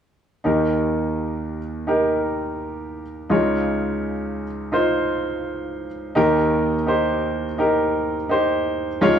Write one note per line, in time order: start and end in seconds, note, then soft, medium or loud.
0.44 3.27 D#2 soft
0.44 3.27 D#3 soft
0.44 1.58 D#4 medium
0.44 1.58 G4 soft
0.44 1.59 A#4 medium
1.87 3.01 D#4 medium
1.87 3.01 G4 medium
1.87 3.02 A#4 medium
3.29 6.12 C#2 medium
3.29 6.12 C#3 medium
3.29 4.44 D#4 medium
3.29 4.44 F4 medium
3.29 4.45 C#5 medium
4.72 5.86 D#4 medium
4.72 5.87 F4 medium
4.72 5.87 C5 medium
6.15 8.98 D#2 medium
6.15 8.98 D#3 medium
6.15 6.72 D#4 medium
6.15 6.73 G4 medium
6.15 6.73 A#4 medium
6.86 7.44 D#4 medium
6.86 7.44 G4 medium
6.86 7.45 C5 medium
7.58 8.15 D#4 medium
7.58 8.16 G4 medium
7.58 8.16 A#4 medium
8.29 8.87 D#4 medium
8.29 8.87 G4 medium
8.29 8.88 C5 medium
9.01 9.19 C#2 medium
9.01 9.19 C#3 medium
9.01 9.19 D#4 medium
9.01 9.19 F4 medium
9.01 9.19 C#5 medium